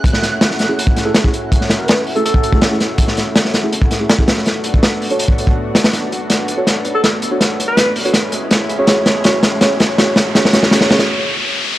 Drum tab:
HH |x-x-x-x-x-x-x-x-|x-x-x-oxx-x-x-x-|x-x-x-x-x-x-x-x-|x-x-x-oxx-x---xx|
SD |-oo-ooo---o-o---|-oo-o-------o-o-|-oo-ooo---o-o-oo|o---o---------oo|
BD |o--------o---o--|o--------o-o----|o--------o---o--|---o-----o-o----|

HH |x-x-x-x-x-x-x-x-|x-x-x-oxx-x-x-x-|x-x-x-x-x-x-x-x-|x-x-x-ox--------|
SD |o---o---o---o---|o---o---o---o---|o-o-o-o-o-o-o-o-|oooooooo--------|
BD |----------------|----------------|----------------|----------------|